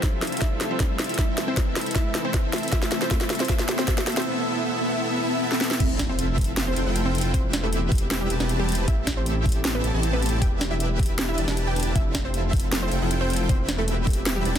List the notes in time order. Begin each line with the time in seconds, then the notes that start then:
Already playing: F3 B3 C4 D4 E4 F4 G4 A4 B4 E5, riser
0.03 A3, kick, snare, closed hi-hat
0.13 A3
0.22 A3, snare, closed hi-hat
0.27 closed hi-hat
0.32 E4, closed hi-hat
0.37 closed hi-hat
0.41 A3 C4 E4 F4 A4 E5, kick, snare, closed hi-hat
0.52 E4
0.61 A3, snare, closed hi-hat
0.71 C4 F4 C5
0.80 A3, kick, snare, closed hi-hat
0.90 A3
0.99 A3, snare, closed hi-hat
1.04 closed hi-hat
1.09 E4, closed hi-hat
1.14 closed hi-hat
1.18 E3 A3 C4 E4 A4 B4 E5, kick, snare, closed hi-hat
1.28 E4
1.38 A3, snare, closed hi-hat
1.48 C4 E4 C5
1.57 A3, kick, snare, closed hi-hat
1.67 A3
1.76 A3, snare, closed hi-hat
1.81 closed hi-hat
1.86 E4, closed hi-hat
1.91 closed hi-hat
1.95 A3 C4 E4 A4 E5, kick, snare, closed hi-hat
2.05 E4
2.15 A3, snare, closed hi-hat
2.25 C4 E4 C5
2.34 A3, kick, snare, closed hi-hat
2.44 A3
2.53 A3, snare, closed hi-hat
2.58 closed hi-hat
2.63 E4, closed hi-hat
2.68 closed hi-hat
2.72 G3 A3 C4 E4 A4 E5, kick, snare, closed hi-hat
2.82 E4, snare
2.92 A3, snare, closed hi-hat
3.02 C4 E4 C5, snare
3.11 A3 C4 E4 A4 E5, kick, snare, closed hi-hat
3.21 E4, snare
3.30 A3, snare, closed hi-hat
3.35 closed hi-hat
3.40 C4 E4 C5, snare, closed hi-hat
3.45 closed hi-hat
3.49 A3 C4 E4 A4 E5, kick, snare, closed hi-hat
3.59 E4, snare
3.68 A3, snare, closed hi-hat
3.78 C4 E4 C5, snare
3.88 A3 C4 E4 A4 E5, kick, snare, closed hi-hat
3.98 E4, snare
4.07 A3, snare, closed hi-hat
4.12 closed hi-hat
4.17 C4 E4 C5, snare, closed hi-hat
4.22 closed hi-hat
4.26 B3 E4 A4 E5
4.45 B3 E4 A4 E5
4.65 B3 E4 A4 E5
4.84 B3 E4 A4 E5
5.03 B3 E4 A4 E5
5.22 B3 E4 A4 E5
5.42 B3 E4 A4 E5
5.52 snare
5.61 B3 E4 A4 E5, snare
5.71 snare
5.80 F1 A3 C4 E4 F4 A4 E5, kick, closed hi-hat, crash, impact
5.90 E4
5.99 A3, kick, snare, closed hi-hat
6.09 C4 F4 C5
6.19 A3, closed hi-hat
6.29 A3
6.38 A3, kick, closed hi-hat
6.41 closed hi-hat
6.44 E4, closed hi-hat
6.57 A3, snare, closed hi-hat
6.67 C4 F4 C5
6.76 F1 A3 C4 E4 F4 A4 G5, closed hi-hat
6.86 F1 A3 C4 E4 F4 A4 G5
6.96 A3, closed hi-hat
7.06 C4 E4 C5
7.15 A3, closed hi-hat
7.18 closed hi-hat
7.21 F4, closed hi-hat
7.34 E1 C4 E4 G4 B4 C5 E5, kick, closed hi-hat
7.44 B3
7.53 B3, snare, closed hi-hat
7.63 A3 E4 A4
7.72 B3, closed hi-hat
7.82 G4
7.92 B3, kick, closed hi-hat
7.95 closed hi-hat
7.98 B3, closed hi-hat
8.11 B3, snare, closed hi-hat
8.21 G3 E4 G4
8.30 E1 B3 C4 E4 G4 B4 A5, closed hi-hat
8.40 E1 C4 E4 G4 B4 A5, snare
8.49 B3, closed hi-hat
8.59 G3 B3 G4
8.69 B3, closed hi-hat
8.72 closed hi-hat
8.75 E4, closed hi-hat
8.88 A1 A3 C4 E4 G4 A4 E5, kick, closed hi-hat
8.98 G4
9.07 A3, kick, snare, closed hi-hat
9.17 A3 C4 C5
9.26 A3, closed hi-hat
9.36 E4
9.45 A3, kick, closed hi-hat
9.49 closed hi-hat
9.52 G4, closed hi-hat
9.65 A3, snare, closed hi-hat
9.75 A3 B3 B4
9.84 A1 A3 C4 E4 G4 A4 A5, closed hi-hat
9.94 A1 C4 E4 G4 A4 A5
10.03 A3, closed hi-hat
10.13 B3 G4 B4
10.22 A3, closed hi-hat
10.26 closed hi-hat
10.29 A3, closed hi-hat
10.41 E1 B3 D4 E4 G4 B4 E5 G5, kick, closed hi-hat
10.52 E4
10.61 B3, snare, closed hi-hat
10.71 E4 G4 E5
10.80 B3, closed hi-hat
10.90 B3
10.99 B3, kick, closed hi-hat
11.03 closed hi-hat
11.06 E4, closed hi-hat
11.19 B3, snare, closed hi-hat
11.29 E4 G4 E5
11.38 E1 D4 E4 G4 B4 A5, closed hi-hat
11.48 E1 D4 E4 G4 B4 A5, snare
11.57 B4, closed hi-hat
11.67 E4 G4 G5
11.76 G4, closed hi-hat
11.80 closed hi-hat
11.83 E4, closed hi-hat
11.95 F1 A3 C4 E4 F4 A4 E5, kick, closed hi-hat
12.06 A3
12.15 A3, kick, snare, closed hi-hat
12.25 C4 F4 C5
12.34 A3, closed hi-hat
12.44 A3
12.53 A3, kick, closed hi-hat
12.57 closed hi-hat
12.60 A3, closed hi-hat
12.72 A3, snare, closed hi-hat
12.82 C4 F4 C5
12.92 F1 A3 C4 E4 F4 A4 G5, closed hi-hat
13.02 F1 A3 C4 E4 F4 A4 G5
13.11 A3, closed hi-hat
13.21 A3 C4 C5
13.30 A3, closed hi-hat
13.33 closed hi-hat
13.36 F4, closed hi-hat
13.49 E1 B3 C4 E4 G4 B4 C5 E5, kick, closed hi-hat
13.59 B3
13.68 B3, snare, closed hi-hat
13.78 A3 B3 A4
13.88 B3, closed hi-hat
13.98 G4
14.07 B3, kick, closed hi-hat
14.10 closed hi-hat
14.13 B3, closed hi-hat
14.26 B3, snare, closed hi-hat
14.36 G3 B3 G4
14.45 E1 B3 C4 E4 G4 B4 A5, closed hi-hat
14.55 C4 E4 G4 B4 A5